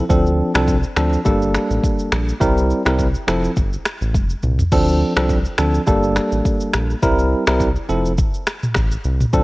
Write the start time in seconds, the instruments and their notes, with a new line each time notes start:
0.10 analog synth bass D2, tine electric piano F3 C4 D4 A4, kick, shaker
0.27 shaker
0.54 analog synth bass C2, tine electric piano F3 C4 D4 A4, finger snap, cross-stick, shaker
0.68 kick, shaker
0.83 shaker
0.96 analog synth bass D2, tine electric piano F3 C4 D4 A4, finger snap, cross-stick, shaker
1.13 shaker
1.25 analog synth bass G1, tine electric piano G3 A#3 D4 A4, kick, shaker
1.42 shaker
1.55 finger snap, cross-stick, shaker
1.70 analog synth bass A1, shaker
1.84 kick, shaker
1.99 shaker
2.12 analog synth bass A#1, finger snap, cross-stick, shaker
2.29 shaker
2.41 analog synth bass C2, tine electric piano G3 C4 E4 A#4, kick, shaker
2.58 shaker
2.70 shaker
2.85 analog synth bass C2, tine electric piano G3 C4 E4 A#4, finger snap, cross-stick, shaker
2.99 kick, shaker
3.14 shaker
3.27 analog synth bass F1, tine electric piano F3 C4 E4 A4, finger snap, cross-stick, shaker
3.44 shaker
3.56 analog synth bass G1, kick, shaker
3.73 shaker
3.85 finger snap, cross-stick, shaker
4.01 analog synth bass A1, shaker
4.14 analog synth bass F1, kick, high tom, shaker
4.30 shaker
4.43 analog synth bass C2, mid tom, shaker
4.59 floor tom, shaker
4.72 analog synth bass D2, tine electric piano F3 C4 D4 A4, kick, crash, shaker
4.88 shaker
5.16 analog synth bass C2, tine electric piano F3 C4 D4 A4, finger snap, cross-stick, shaker
5.29 kick, shaker
5.45 shaker
5.58 analog synth bass D2, tine electric piano F3 C4 D4 A4, finger snap, cross-stick, shaker
5.74 shaker
5.87 analog synth bass G1, tine electric piano G3 A#3 D4 A4, kick, shaker
6.03 shaker
6.16 finger snap, cross-stick, shaker
6.32 analog synth bass A1, shaker
6.45 kick, shaker
6.60 shaker
6.73 analog synth bass A#1, finger snap, cross-stick, shaker
6.90 shaker
7.02 analog synth bass C2, tine electric piano G3 C4 E4 A#4, kick, shaker
7.19 shaker
7.47 analog synth bass C2, tine electric piano G3 C4 E4 A#4, finger snap, cross-stick, shaker
7.60 kick, shaker
7.76 shaker
7.89 analog synth bass F1, tine electric piano F3 C4 E4 A4, shaker
8.05 shaker
8.18 kick, shaker
8.34 shaker
8.47 finger snap, cross-stick, shaker
8.63 mid tom, shaker
8.74 analog synth bass A1, finger snap, kick, cross-stick, shaker
8.91 shaker
9.04 analog synth bass C2, shaker
9.20 mid tom, shaker
9.33 analog synth bass D2, tine electric piano F3 C4 D4 A4, kick, shaker